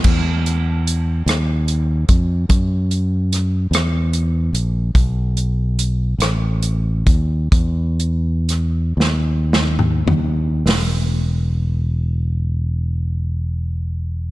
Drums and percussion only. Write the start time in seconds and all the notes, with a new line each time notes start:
0.04 kick, crash
0.46 closed hi-hat
0.87 closed hi-hat
1.28 cross-stick, closed hi-hat
1.68 closed hi-hat
2.09 kick, closed hi-hat
2.50 kick, closed hi-hat
2.91 closed hi-hat
3.32 cross-stick, closed hi-hat
3.73 cross-stick, closed hi-hat
4.13 closed hi-hat
4.55 closed hi-hat
4.95 kick, closed hi-hat
5.37 closed hi-hat
5.79 closed hi-hat
6.20 cross-stick, closed hi-hat
6.62 closed hi-hat
7.07 kick, closed hi-hat
7.52 kick, closed hi-hat
8.00 closed hi-hat
8.49 cross-stick, closed hi-hat
9.00 snare
9.53 snare
9.79 mid tom
10.08 floor tom
10.67 snare, open hi-hat